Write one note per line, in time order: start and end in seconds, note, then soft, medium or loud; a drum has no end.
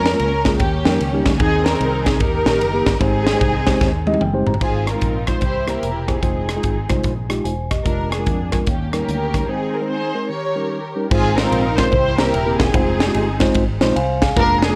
0.00 0.14 F2 loud
0.00 0.19 C#4 medium
0.00 0.17 A#4 loud
0.06 snare loud
0.06 ride medium
0.13 0.32 G#3 medium
0.13 0.32 A#3 medium
0.13 0.32 C#4 medium
0.13 0.32 F4 medium
0.13 0.32 A#4 medium
0.19 0.60 C#2 loud
0.19 0.58 C#4 medium
0.19 0.57 A#4 loud
0.19 ride medium
0.45 0.60 G#3 medium
0.45 0.60 A#3 medium
0.45 0.60 C#4 medium
0.45 0.60 F4 medium
0.45 0.60 G#4 medium
0.45 kick medium
0.45 snare loud
0.45 ride medium
0.59 0.82 D#2 loud
0.59 1.22 D#3 medium
0.59 1.37 A#3 medium
0.59 1.37 C#4 medium
0.59 1.21 G4 loud
0.59 kick loud
0.59 ride medium
0.85 0.98 F2 loud
0.85 0.99 G3 medium
0.85 1.00 A#3 medium
0.85 1.00 C#4 medium
0.85 1.00 D#4 medium
0.85 1.00 A#4 medium
0.85 snare loud
0.85 ride medium
1.00 1.22 C#2 medium
1.00 ride medium
1.13 1.32 G3 medium
1.13 1.33 A#3 medium
1.13 1.33 C#4 medium
1.13 1.33 D#4 medium
1.13 1.33 G4 loud
1.25 1.38 D2 medium
1.25 kick medium
1.25 snare loud
1.25 ride medium
1.39 1.74 D#2 loud
1.39 2.02 D#3 medium
1.39 1.65 C4 medium
1.39 2.17 C4 medium
1.39 1.66 D#4 medium
1.39 1.65 D#4 medium
1.39 1.64 G#4 loud
1.39 1.66 G#4 medium
1.39 kick loud
1.39 ride medium
1.65 2.17 D#4 medium
1.65 2.06 A#4 loud
1.65 snare loud
1.65 ride medium
1.73 1.92 C4 medium
1.73 1.92 D#4 medium
1.73 1.93 G#4 medium
1.80 2.21 C2 loud
1.80 ride medium
2.04 2.20 C4 medium
2.04 2.20 D#4 medium
2.04 2.20 G#4 medium
2.04 2.21 G#4 medium
2.04 kick medium
2.04 snare loud
2.04 ride medium
2.19 2.43 D#2 loud
2.19 2.82 D#3 medium
2.19 2.97 D#4 medium
2.19 2.97 G4 medium
2.19 3.00 A#4 loud
2.19 kick loud
2.19 ride medium
2.46 2.61 A#1 medium
2.46 2.60 A#3 medium
2.46 2.60 D#4 medium
2.46 2.60 G4 medium
2.46 snare loud
2.46 ride medium
2.61 2.83 F#1 medium
2.61 ride medium
2.73 2.93 A#3 medium
2.73 2.93 D#4 medium
2.73 2.93 G4 loud
2.86 2.99 G1 medium
2.86 kick medium
2.86 snare loud
2.86 ride medium
3.00 3.35 G#1 medium
3.00 3.62 G#2 medium
3.00 3.25 G#3 medium
3.00 3.25 C4 medium
3.00 4.18 C4 medium
3.00 3.25 D#4 medium
3.00 4.17 D#4 medium
3.00 3.25 G4 medium
3.00 4.21 G#4 loud
3.00 3.26 C5 medium
3.00 kick loud
3.00 ride medium
3.27 snare loud
3.27 ride medium
3.34 3.53 G#3 medium
3.34 3.53 C4 medium
3.34 3.53 D#4 medium
3.34 3.53 G4 medium
3.34 3.53 C5 medium
3.41 3.75 C2 medium
3.41 kick loud
3.41 ride medium
3.66 3.88 G#3 medium
3.66 3.88 C4 medium
3.66 3.89 D#4 medium
3.66 3.89 G4 medium
3.66 3.89 C5 loud
3.66 kick medium
3.66 snare loud
3.66 ride medium
3.81 4.15 D#2 medium
3.81 kick loud
3.81 snare medium
4.07 4.21 G#3 medium
4.07 4.21 C4 medium
4.07 4.21 D#4 medium
4.07 4.21 G4 medium
4.07 4.21 D#5 loud
4.07 high tom medium
4.14 high tom medium
4.21 4.43 F#1 medium
4.21 4.45 G5 medium
4.21 mid tom medium
4.34 4.54 G#3 medium
4.34 4.54 C4 medium
4.34 4.54 D#4 medium
4.34 4.54 G4 medium
4.34 4.54 C5 loud
4.47 4.60 G1 medium
4.47 4.61 A#5 medium
4.47 floor tom loud
4.54 floor tom medium
4.61 4.96 G#1 medium
4.61 5.24 G#2 medium
4.61 4.87 G#3 medium
4.61 5.39 C4 medium
4.61 4.87 D#4 medium
4.61 4.87 F4 medium
4.61 4.86 F4 medium
4.61 4.86 G#4 medium
4.61 4.87 C5 medium
4.61 kick loud
4.61 crash medium
4.88 5.39 D#4 medium
4.88 5.39 F4 medium
4.88 5.28 A#4 medium
4.88 cross-stick loud
4.88 closed hi-hat medium
4.94 5.14 G#3 medium
4.94 5.14 D#4 medium
4.94 5.14 F4 medium
4.94 5.14 A#4 medium
5.02 5.36 A#1 medium
5.02 kick medium
5.02 closed hi-hat medium
5.27 5.42 G#3 medium
5.27 5.42 D#4 medium
5.27 5.42 F4 medium
5.27 5.42 C5 medium
5.27 5.41 C5 medium
5.27 kick medium
5.27 cross-stick loud
5.27 closed hi-hat medium
5.41 5.77 C2 medium
5.41 6.05 C3 medium
5.41 5.68 E4 medium
5.41 5.68 G4 medium
5.41 5.67 C5 medium
5.41 kick medium
5.41 closed hi-hat medium
5.67 5.89 A#3 medium
5.67 5.90 E4 medium
5.67 6.20 E4 medium
5.67 5.90 G4 medium
5.67 6.20 G4 medium
5.67 6.09 A#4 medium
5.67 5.90 C5 medium
5.67 cross-stick medium
5.67 closed hi-hat medium
5.83 6.17 E1 medium
5.83 closed hi-hat medium
6.07 6.17 A#3 medium
6.07 7.27 C4 medium
6.07 7.27 D#4 medium
6.07 6.18 E4 medium
6.07 6.18 G4 medium
6.07 7.31 G#4 medium
6.07 6.18 C5 medium
6.07 kick medium
6.07 cross-stick medium
6.07 closed hi-hat medium
6.22 6.58 F1 medium
6.22 6.48 G#3 medium
6.22 6.48 D#4 medium
6.22 6.48 F4 medium
6.22 6.48 C5 medium
6.22 kick loud
6.22 closed hi-hat medium
6.49 cross-stick loud
6.49 closed hi-hat medium
6.56 6.76 G#3 medium
6.56 6.76 D#4 medium
6.56 6.76 F4 medium
6.56 6.76 G#4 medium
6.63 6.86 G#1 medium
6.63 kick medium
6.63 closed hi-hat medium
6.89 7.03 C2 medium
6.89 7.11 G#3 medium
6.89 7.11 D#4 medium
6.89 7.12 F4 medium
6.89 7.12 C5 medium
6.89 kick medium
6.89 cross-stick loud
6.89 closed hi-hat medium
7.04 7.39 A#1 medium
7.04 kick medium
7.04 closed hi-hat medium
7.29 7.52 G#3 medium
7.29 7.52 D#4 medium
7.29 7.52 F4 medium
7.29 7.45 G4 medium
7.29 cross-stick loud
7.29 closed hi-hat medium
7.44 7.79 E1 medium
7.44 7.70 C5 soft
7.44 7.69 G#5 medium
7.44 closed hi-hat medium
7.71 8.10 G4 medium
7.71 8.09 D#5 medium
7.71 kick medium
7.71 cross-stick medium
7.71 closed hi-hat medium
7.85 8.28 F1 medium
7.85 8.11 G#3 medium
7.85 8.11 D4 medium
7.85 8.11 F4 medium
7.85 8.10 A#4 medium
7.85 8.11 A#4 medium
7.85 kick medium
7.85 closed hi-hat medium
8.11 8.63 D4 medium
8.11 8.51 G#4 medium
8.11 cross-stick loud
8.11 closed hi-hat medium
8.18 8.38 G#3 medium
8.18 8.38 D4 medium
8.18 8.38 F4 medium
8.18 8.39 A#4 medium
8.26 8.61 F2 medium
8.26 kick medium
8.26 closed hi-hat medium
8.51 8.66 G#3 medium
8.51 8.67 D4 medium
8.51 8.67 F4 medium
8.51 8.59 G#4 medium
8.51 8.67 A#4 medium
8.51 kick medium
8.51 cross-stick loud
8.51 closed hi-hat medium
8.66 9.02 D#2 medium
8.66 9.30 D#3 medium
8.66 9.45 A#3 medium
8.66 8.93 C#4 medium
8.66 8.91 G4 medium
8.66 kick loud
8.66 closed hi-hat medium
8.92 9.15 G3 medium
8.92 9.15 C#4 medium
8.92 9.45 C#4 medium
8.92 9.15 D#4 medium
8.92 9.45 G4 medium
8.92 9.49 A#4 medium
8.92 9.15 A#4 medium
8.92 cross-stick medium
8.92 closed hi-hat medium
9.08 9.42 D2 medium
9.08 closed hi-hat medium
9.34 9.43 G3 medium
9.34 9.43 C#4 medium
9.34 9.43 D#4 medium
9.34 9.43 A#4 medium
9.34 kick medium
9.34 cross-stick medium
9.34 closed hi-hat medium
9.48 10.11 D#3 medium
9.48 9.73 G#3 medium
9.48 10.26 C4 medium
9.48 9.74 C4 medium
9.48 9.88 D#4 medium
9.48 9.74 D#4 medium
9.48 9.74 G#4 medium
9.48 9.74 C5 medium
9.74 9.89 A#4 medium
9.81 10.01 G#3 medium
9.81 10.01 C4 medium
9.81 10.01 D#4 medium
9.81 10.01 C5 medium
9.89 10.27 D#4 medium
9.89 10.27 G#4 medium
9.89 10.30 C5 medium
10.14 10.29 G#3 medium
10.14 10.29 C4 medium
10.14 10.30 D#4 medium
10.14 10.30 A#4 medium
10.29 10.92 D#3 soft
10.29 11.07 G4 medium
10.29 11.07 A#4 medium
10.29 10.92 C#5 medium
10.55 10.78 G3 medium
10.55 10.78 C#4 medium
10.55 10.78 D#4 medium
10.55 10.78 A#4 medium
10.96 11.06 G3 medium
10.96 11.06 C#4 medium
10.96 11.06 D#4 medium
10.96 11.06 A#4 medium
11.11 11.46 G#1 loud
11.11 11.74 G#2 medium
11.11 11.36 G#3 medium
11.11 11.36 C4 medium
11.11 11.89 C4 medium
11.11 11.36 D#4 medium
11.11 11.37 F4 medium
11.11 11.36 G#4 loud
11.11 11.37 C5 medium
11.11 kick loud
11.11 crash loud
11.36 11.89 D#4 medium
11.36 11.89 F4 medium
11.36 11.78 A#4 loud
11.36 snare loud
11.36 ride medium
11.43 11.64 G#3 medium
11.43 11.63 C4 medium
11.43 11.64 D#4 medium
11.43 11.64 F4 medium
11.43 11.64 C5 medium
11.52 11.86 A#1 loud
11.52 ride medium
11.77 11.92 G#3 medium
11.77 11.92 C4 medium
11.77 11.93 D#4 medium
11.77 11.93 F4 medium
11.77 11.93 A#4 loud
11.77 11.90 C5 loud
11.77 kick medium
11.77 snare loud
11.77 ride medium
11.92 12.35 C2 loud
11.92 12.55 C3 medium
11.92 12.18 E4 medium
11.92 12.18 G4 medium
11.92 12.16 C5 loud
11.92 kick loud
11.92 ride medium
12.17 12.32 A#3 medium
12.17 12.32 C4 medium
12.17 12.33 E4 medium
12.17 12.70 E4 medium
12.17 12.33 G4 medium
12.17 12.70 G4 medium
12.17 12.59 A#4 loud
12.17 12.33 C5 medium
12.17 snare loud
12.17 ride medium
12.33 12.55 D#1 loud
12.33 ride medium
12.45 12.66 A#3 medium
12.45 12.66 C4 medium
12.45 12.66 E4 medium
12.45 12.66 G4 medium
12.45 12.66 A#4 medium
12.58 12.72 E1 medium
12.58 13.77 C4 medium
12.58 13.77 D#4 medium
12.58 13.81 G#4 loud
12.58 kick medium
12.58 snare loud
12.58 ride medium
12.73 13.08 F1 loud
12.73 12.99 G#3 medium
12.73 12.99 C4 medium
12.73 12.99 D#4 medium
12.73 12.99 F4 medium
12.73 12.99 C5 medium
12.73 kick loud
12.73 ride medium
13.00 snare loud
13.00 ride medium
13.06 13.26 G#3 medium
13.06 13.26 C4 medium
13.06 13.26 D#4 medium
13.06 13.26 F4 medium
13.06 13.27 G4 loud
13.14 13.49 G1 loud
13.14 ride medium
13.40 13.62 G#3 loud
13.40 13.62 C4 medium
13.40 13.62 D#4 medium
13.40 13.63 F4 loud
13.40 13.63 C5 loud
13.40 kick medium
13.40 snare loud
13.40 ride medium
13.54 13.77 G#1 loud
13.54 kick loud
13.54 ride medium
13.80 13.93 A#1 loud
13.80 13.95 G#3 loud
13.80 13.95 C4 medium
13.80 13.95 D#4 medium
13.80 13.95 F4 medium
13.80 13.95 C5 loud
13.80 snare loud
13.80 ride medium
13.96 14.30 C2 loud
13.96 14.21 C5 medium
13.96 14.20 F5 medium
13.96 14.20 G#5 medium
13.96 ride medium
14.21 14.61 G#4 medium
14.21 14.60 F5 medium
14.21 14.35 G#5 medium
14.21 kick medium
14.21 snare loud
14.21 ride medium
14.36 14.71 F1 loud
14.36 14.61 G#3 medium
14.36 14.61 A#3 medium
14.36 14.61 D4 medium
14.36 14.62 D4 medium
14.36 14.61 F4 medium
14.36 14.61 A#4 medium
14.36 14.61 A#4 loud
14.36 kick loud
14.36 ride medium
14.62 14.75 D4 medium
14.62 14.75 G#4 loud
14.62 snare loud
14.62 ride medium
14.69 14.75 G#3 medium
14.69 14.75 A#3 medium
14.69 14.75 D4 medium
14.69 14.75 F4 medium
14.69 14.75 G#4 medium